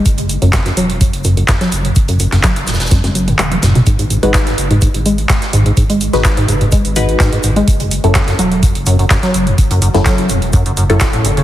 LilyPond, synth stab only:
\new Staff \with { instrumentName = "Synth stab" } { \time 4/4 \key gis \phrygian \tempo 4 = 126 r1 | r1 | r8. <gis dis' fis' b'>16 r2. | r8. <gis dis' fis' b'>16 r4. <gis dis' fis' b'>4. |
r8. <fis cis' e' a'>16 r2. | r8. <fis cis' e' a'>16 r4. r16 <fis cis' e' a'>16 r4 | }